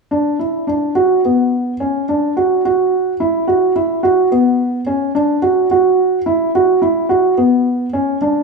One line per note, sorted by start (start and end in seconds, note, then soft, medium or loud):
0.11 0.35 D4 medium
0.39 0.64 E4 medium
0.67 0.91 D4 medium
0.95 1.19 F#4 medium
1.25 1.73 B3 medium
1.80 2.04 C#4 medium
2.09 2.32 D4 medium
2.37 2.60 F#4 medium
2.65 3.12 F#4 medium
3.20 3.44 E4 medium
3.48 3.71 F#4 medium
3.76 3.99 E4 medium
4.03 4.27 F#4 medium
4.32 4.79 B3 medium
4.87 5.10 C#4 medium
5.15 5.38 D4 medium
5.42 5.66 F#4 medium
5.71 6.18 F#4 medium
6.26 6.50 E4 medium
6.55 6.78 F#4 medium
6.82 7.05 E4 medium
7.09 7.33 F#4 medium
7.38 7.85 B3 medium
7.93 8.17 C#4 medium
8.22 8.43 D4 medium